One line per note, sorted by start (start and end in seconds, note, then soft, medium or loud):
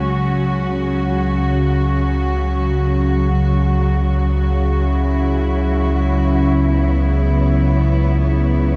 0.00 3.29 C#2 medium
0.00 3.29 C#3 medium
0.00 8.76 C#3 medium
0.00 8.76 F#3 medium
0.00 3.32 C#4 medium
0.00 6.53 F#4 medium
3.29 8.76 C#2 medium
3.29 8.76 C#3 medium
3.29 8.76 C#5 medium
4.82 8.76 E4 medium
6.64 8.76 B3 medium